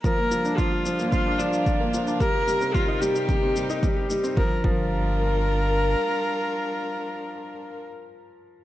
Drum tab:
SH |x-xxx-xxx-xxx-xx|x-xxx-xxx-xxx-xx|----------------|----------------|
BD |o---o---o---o---|o---o---o---o---|o-o-------------|----------------|